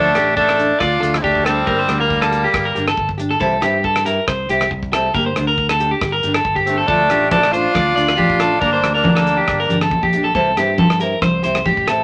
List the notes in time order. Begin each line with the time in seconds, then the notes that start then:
Already playing: D2 A3 D4 A4
0.14 A1 A3 D4 G4 A4, cross-stick, closed hi-hat
0.36 A3 D4 A4, kick
0.49 cross-stick
0.57 A3 D4 A4, closed hi-hat
0.80 D2 D4 F4 D5, kick, cross-stick
1.00 D2 A3 D4 A4, muted clean electric guitar stroke, closed hi-hat
1.14 E4, cross-stick
1.19 C4 D4
1.24 D2 A3 G4, kick
1.35 kick
1.43 A3 C4 D4 A4, cross-stick, closed hi-hat
1.48 G3
1.66 G1 A#3 D4 G4 A#4, kick
1.79 C5
1.87 D2 D4 G4, cross-stick, closed hi-hat
1.99 G3 A#3 A#4
2.10 kick
2.21 A4, cross-stick
2.31 G4, muted nylon-string guitar stroke, closed hi-hat
2.44 G4
2.54 G1, kick, cross-stick
2.65 A#4
2.75 G1 D4 G4, closed hi-hat
2.88 A4, cross-stick
2.97 G1, kick
3.09 kick
3.18 D4 G4, closed hi-hat
3.31 A4
3.39 C2 E3 C4 E4 G4 A4, kick
3.61 G2 C4 E4 G4, cross-stick, closed hi-hat
3.84 A4, kick
3.96 cross-stick
4.05 E4 G4 A#4, closed hi-hat
4.28 C2 C5, kick, cross-stick
4.49 C2 C4 E4 G4, closed hi-hat
4.61 cross-stick
4.71 C2, muted clean electric guitar stroke, kick
4.83 kick
4.92 C4 E4 G4 A4, cross-stick, closed hi-hat
5.14 G1 A#3 D4 G4 A#4, kick
5.26 C5
5.36 D2 D4, cross-stick, closed hi-hat
5.47 A#4
5.58 kick
5.69 A4, cross-stick
5.80 D4 G4, closed hi-hat
5.91 G4
6.01 G1, kick, cross-stick
6.12 A#4
6.23 G1 D4 G4, closed hi-hat
6.34 A4, cross-stick
6.45 G1, kick
6.56 G4, kick
6.66 A3 C4 D4 G4, closed hi-hat
6.77 A4
6.88 D2 F3 A3 D4 F4 A4, muted nylon-string guitar stroke, kick, muted conga
7.09 A1 A3 D4 F4 G4, cross-stick, closed hi-hat, muted conga
7.31 A3 D4 A4, kick, high conga
7.43 cross-stick
7.52 A3 D4 F4 C5, closed hi-hat
7.75 D2 D5, kick, cross-stick, muted conga, high conga
7.96 D2 A3 D4 F4 D5, closed hi-hat
8.08 cross-stick
8.15 A1 D4 F4 G4, kick, muted conga, high conga
8.30 kick
8.39 A3 D4 F4 A4, cross-stick, closed hi-hat
8.60 G1 A#3 D4 G4 A#4, kick, muted conga
8.73 C5
8.83 D2 D4 G4, cross-stick, closed hi-hat, muted conga
8.94 A#3 D4 A#4
9.04 kick, high conga
9.15 A4, cross-stick
9.27 D4, closed hi-hat
9.37 G4
9.47 G1, kick, cross-stick, muted conga
9.60 A#4
9.69 G1 D4 G4, closed hi-hat, high conga
9.81 A4, cross-stick
9.91 A#1, kick, muted conga, high conga
10.03 G4, kick
10.13 D4 G4, closed hi-hat
10.24 A4
10.34 C2 E3 C4 E4 A4, muted nylon-string guitar stroke, kick, muted conga
10.56 G2 C4 E4 G4, cross-stick, closed hi-hat, muted conga
10.78 A4, kick, high conga
10.90 cross-stick
10.99 C4 E4 G4 A#4, closed hi-hat
11.22 C2 C5, kick, cross-stick, muted conga, high conga
11.43 C2 C4 E4 G4 C5, closed hi-hat
11.55 cross-stick
11.66 A1 G4, kick, muted conga, high conga
11.77 kick
11.87 C4 E4 G4 A4, cross-stick, closed hi-hat